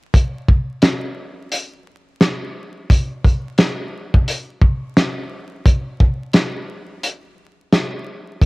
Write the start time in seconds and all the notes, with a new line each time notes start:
0.14 kick, closed hi-hat
0.49 kick
0.82 snare, closed hi-hat
1.52 closed hi-hat
2.21 snare, closed hi-hat
2.90 kick, closed hi-hat
3.24 kick, closed hi-hat
3.58 snare, closed hi-hat
4.14 kick
4.28 closed hi-hat
4.61 kick
4.97 snare, closed hi-hat
5.66 kick, closed hi-hat
6.00 kick
6.33 snare, closed hi-hat
7.03 closed hi-hat
7.72 snare, closed hi-hat
8.42 kick, closed hi-hat